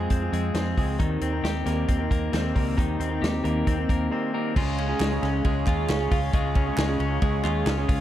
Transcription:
Already playing: F3 G#3 C4 F4 G#4
0.10 F2 C4, kick, closed hi-hat
0.21 C4 F4 G#4
0.33 F2 G#3, closed hi-hat
0.54 F2 G#3 C4 F4 G#4, snare, closed hi-hat
0.77 C#2 G#3 C4 F4 G#4, kick, open hi-hat
0.99 D#2 D#3 G3 C4 D#4 A#4, kick, closed hi-hat
1.21 D#2 C4, closed hi-hat
1.33 C4 D#4 A#4
1.44 D#2 G4, snare, closed hi-hat
1.66 D#2 G3 A#3 C4 D#4 A#4, snare, closed hi-hat
1.88 D#2 C4, kick, closed hi-hat
1.98 C4 D#4 A#4
2.11 D#2 A#3, kick, closed hi-hat
2.32 D#2 G3 C4 D#4 A#4, snare, closed hi-hat
2.54 C#2 G3 A#3 C4 D#4 A#4, kick, open hi-hat
2.76 D#2 D#3 G3 C4 D#4 A#4, kick, closed hi-hat
3.00 D#2 C4, closed hi-hat
3.10 C4 D#4 A#4
3.22 D#2 G4, snare, closed hi-hat
3.43 D#2 G3 A#3 C4 D#4 A#4, closed hi-hat
3.67 D#2 C4, kick, closed hi-hat
3.77 C4 D#4 A#4
3.89 D#2 A#3, kick, closed hi-hat
4.10 G3 C4 D#4 A#4
4.33 G3 A#3 C4 D#4 A#4
4.55 C#2 G#3 C#4 F4 G#4 F5 C#6, kick, crash
4.78 C#4, ride
4.88 C#4 F4 G#4
5.00 C#2 G#3, snare, clap, ride
5.11 C#3 G#3 C#4 F4 G#4
5.23 C#2 C#4, snare, ride
5.44 C#2 G#3 C#4 F4 G#4, kick, ride
5.66 D#2 G#3 C#4 F4 G#4, kick, clap, ride
5.89 C#2 C#4, snare, clap, ride
6.00 C#4 F4 G#4
6.11 C#2 F4, kick, open hi-hat, ride
6.33 C#2 G#3 C#4 F4 G#4, kick, hi-hat pedal, ride
6.55 C#4, kick, ride
6.66 C#4 F4 G#4
6.78 C#2 G#3, snare, clap, ride
6.89 C#3 G#3 C#4 F4 G#4
7.00 C#2 C#4, ride
7.21 C#2 G#3 C#4 F4 G#4, kick, ride
7.44 D#2 G#3 C#4 F4 G#4, clap, ride
7.66 C#2 C#4, snare, clap, ride
7.77 C#4 F4 G#4
7.88 C#2 F4, kick, open hi-hat, ride

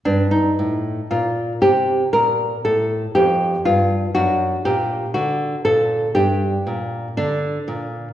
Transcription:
0.05 G2 D4
0.31 D#4
0.59 A2
1.11 A#2 F4
1.62 C3 G4
2.13 A#2 A#4
2.65 A2 A4
3.15 F2 G4
3.65 G2 F4
4.15 F#2 D4 F#4
4.65 A#2 G4
5.14 D3 F#4
5.65 A#2 A4
6.15 G2 D4 G4
6.67 A#2
7.17 D3 D4
7.68 A#2

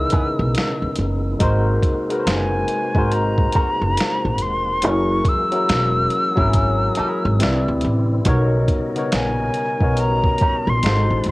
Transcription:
Already playing: C#3 E3 G#3 B3 C#4 D#4 E4 A#4 B4 E6
0.10 B3 E4 G#4, muted upright bass stroke, kick, closed hi-hat
0.39 B1
0.55 finger snap, snare, closed hi-hat
0.82 D#2
0.96 F#1, closed hi-hat
1.39 G#1 C3 G#3 A#3 D#4 F#4 A#4 C5, kick, closed hi-hat
1.82 kick, closed hi-hat
2.10 G#3 D#4 F#4 A#4 B4, closed hi-hat
2.20 C5 A#5
2.27 F#1 G#5, finger snap, snare, closed hi-hat
2.68 closed hi-hat
2.95 G#1 G#3 D#4 F#4 A#4 C5, kick
3.12 A#5, closed hi-hat
3.38 kick
3.52 C4 F#4 A#4, muted upright bass stroke, kick, closed hi-hat
3.82 F#1
3.97 finger snap, snare, closed hi-hat
4.25 A#1
4.38 E1, closed hi-hat
4.42 C6
4.82 F#1 E3 F#3 G#3 C#4 E4 G#4, closed hi-hat
4.86 A#4 C#6
5.25 E6, kick, closed hi-hat
5.51 F#3 C#4 E4 G#4 A#4, closed hi-hat
5.69 E1, finger snap, snare, closed hi-hat
6.10 closed hi-hat
6.36 G#1 F#3 C#4 E4 G#4 A#4, kick
6.54 muted hollow-body jazz guitar stroke, kick, closed hi-hat
6.95 E4 G#4, muted upright bass stroke, closed hi-hat
7.00 A#4
7.25 G#1
7.39 C2 C3 D3 G3 C4 E4 B4 D5, closed hi-hat
7.43 finger snap, snare
7.68 D2
7.81 A1, closed hi-hat
8.24 B1 B2 C#3 B3 D#4 A#4, kick, closed hi-hat
8.29 C#5
8.68 kick, closed hi-hat
8.95 C#3 B3 D#4 A#4 C#5, closed hi-hat
9.12 A#1 G#5, finger snap, snare, closed hi-hat
9.54 closed hi-hat
9.80 B1 B2 B3 D#4 A#4 C#5, kick
9.97 A#5, closed hi-hat
10.24 kick
10.38 C#4, muted upright bass stroke, kick, closed hi-hat
10.42 D#4 A#4
10.67 A#1 C6
10.83 G#1 C3 G#3 D#4 F#4 A4, finger snap, snare, closed hi-hat
10.87 C5
11.10 A1
11.24 C2, closed hi-hat

